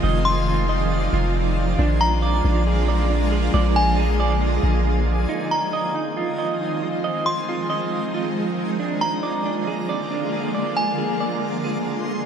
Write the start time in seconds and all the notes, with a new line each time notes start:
Already playing: D#3 F3 G#3 C4 D#4 F4 G#5
0.03 F1 D5 D#5
0.25 C6
0.48 F4
0.69 D#5
1.13 F1 F4
1.79 A#1 D3 F3 G#3 A#3 D4 F4 G#4 A#5
2.01 A#5
2.22 D5
2.45 A#1 D4
2.67 G#4
2.88 D5
3.10 D4
3.32 G#4
3.54 A#1 D5 G#5
3.76 G#5
3.98 G#4
4.20 D5
4.63 A#1 G#4
5.29 D#3 F3 G#3 C4 D#4 F4 D#5 G#5
5.51 A#5
5.73 D#5
5.95 D#4
6.17 F4
6.39 D#5
6.61 D#4
6.83 F4
7.04 D#4 D#5
7.26 C6
7.49 F4
7.70 D#5
8.14 F4
8.79 D3 A#3 D4 F4 G#4 D5 A#5
9.01 A#5
9.23 D5
9.46 D4
9.67 G#4
9.89 D5
10.11 D4
10.32 G#4
10.55 D5 C6
10.77 G#5
10.98 G#4
11.20 D5
11.64 G#4